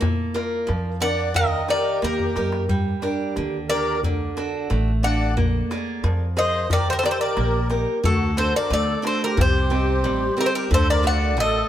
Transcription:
0.01 A#2 A#3, darbuka dum
0.34 F4 A#4 D5, darbuka tek
0.52 darbuka tek
0.67 F2 F3, darbuka tek
0.85 darbuka tek
1.00 D4 A#4 D5 F#5, darbuka tek
1.34 D#2 D#3 A#4 D#5, darbuka dum
1.52 darbuka tek
1.68 D#4 G4 A#4 D5, darbuka tek
2.02 D#2 A#3 G4 A#4, darbuka tek
2.19 darbuka dum
2.36 F#2 D#4 G4 A#4, darbuka tek
2.52 darbuka tek
2.69 G2 G3, darbuka dum
3.02 D4 G4 A#4, darbuka tek
3.20 darbuka tek
3.36 D#2 D3, darbuka tek
3.53 darbuka tek
3.69 D4 G4 A#4 D5
4.03 D2 D3, darbuka dum
4.37 D4 F#4 A4, darbuka tek
4.54 darbuka tek
4.70 A1 A3, darbuka tek
4.87 darbuka tek
5.03 D4 F#4 A4 D5 F#5, darbuka tek
5.37 A#1 A#3, darbuka dum
5.71 G#4 A#4 D5, darbuka tek
5.88 darbuka tek
6.04 F2 F3, darbuka tek
6.20 darbuka tek
6.37 G#4 A#4 C5 D#5 F5, darbuka tek
6.70 D#2 D#3 A#4 D5, darbuka dum
6.87 A4 C5, darbuka tek
6.91 G4 A#4
6.98 A4 C5
7.03 D#4 G4 A#4 D5, darbuka tek
7.11 A4 C5
7.20 A#4 D5, darbuka tek
7.37 A#1 A#3, darbuka tek
7.70 D#4 G4 A#4, darbuka tek
8.04 D2 D3 F#4 A4, darbuka dum
8.37 D4 F#4 A4 C5, darbuka tek
8.54 A#4 D5, darbuka tek
8.70 D2 A3 A4 D5, darbuka tek
8.88 darbuka tek
9.02 D4 F#4 A4, darbuka tek
9.07 C5
9.23 G4 A#4
9.37 C2 C3 G4 C5, darbuka dum
9.70 C4 D#4 G4, darbuka tek
9.89 darbuka tek
10.04 A1 G3, darbuka tek
10.22 darbuka tek
10.37 C4 D#4 G4 A#4, darbuka tek
10.44 A4 C5
10.53 G4 A#4
10.71 D2 D3 A4 C5, darbuka dum
10.90 A#4 D5
11.03 A3 F#4 D5 F#5, darbuka tek
11.22 darbuka tek
11.37 A1 A3 A4 D#5, darbuka tek
11.55 darbuka tek

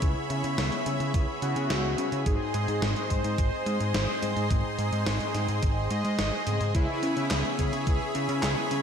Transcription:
Already playing: G#4 C#5 E5 B5
0.02 C#2 C#3 B3 C#4 E4, kick, closed hi-hat
0.30 C#3, closed hi-hat
0.44 C#3, closed hi-hat
0.58 C#2, snare, closed hi-hat
0.72 closed hi-hat
0.86 C#3, closed hi-hat
1.00 C#3, closed hi-hat
1.14 C#2, kick, closed hi-hat
1.42 C#3 B3 C#4 E4 F#4, closed hi-hat
1.56 C#3, closed hi-hat
1.70 C#2, snare, closed hi-hat
1.98 C#3, closed hi-hat
2.12 C#3, closed hi-hat
2.26 G#1 G#2 G#3 C4 D#4 G#4 C5 D#5 C6, kick, closed hi-hat
2.54 G#2, closed hi-hat
2.68 G#2, closed hi-hat
2.82 G#1, snare, closed hi-hat
2.96 closed hi-hat
3.10 G#2 C5, kick, closed hi-hat
3.24 G#2, closed hi-hat
3.38 G#1, kick, closed hi-hat
3.66 G#2 G#3 C4 D#4, closed hi-hat
3.80 G#2, closed hi-hat
3.94 G#1 C5, snare, closed hi-hat
4.22 G#2, closed hi-hat
4.36 G#2, closed hi-hat
4.50 G#1 G#2 G#3 C4 D#4, kick, closed hi-hat
4.78 G#2, closed hi-hat
4.93 G#2, closed hi-hat
5.06 G#1, snare, closed hi-hat
5.21 closed hi-hat
5.35 G#2, snare, closed hi-hat
5.49 G#2, closed hi-hat
5.63 G#1, kick, closed hi-hat
5.91 G#2 D#5, closed hi-hat
6.05 G#2, closed hi-hat
6.19 G#1, snare, closed hi-hat
6.47 G#2 C#3 G#3 C4 G#4, closed hi-hat
6.61 G#2, closed hi-hat
6.75 C#2 C#3 B3 C#4 E4 C#5 E5 B5, kick, closed hi-hat
7.03 C#3, closed hi-hat
7.17 C#3, closed hi-hat
7.31 C#2, snare, clap, closed hi-hat
7.45 closed hi-hat
7.59 C#3 G#4, kick, closed hi-hat
7.73 C#3, closed hi-hat
7.87 C#2, kick, closed hi-hat
8.15 C#3 B3 C#4 E4, closed hi-hat
8.29 C#3, closed hi-hat
8.43 C#2 G#4, snare, clap, closed hi-hat
8.71 C#3, closed hi-hat

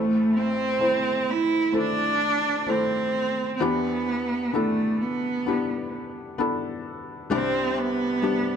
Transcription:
Already playing: A1 A2 A3 C4 E4 A4
0.37 C4
0.80 A3 C4 E4 C5
1.31 E4
1.72 A3 C4 D4 E4 A4
2.67 A3 C4 E4 A4
3.56 C4
3.60 E2 E3 B3 D4 E4 G4
4.53 A3 B3 D4 E4 A4
5.02 B3
5.46 B3 D4 E4 G4
6.38 B3 D4 E4 A4
7.30 C2 C3 G3 C4 D4 G4
7.78 B3
8.22 G3 D4 G4

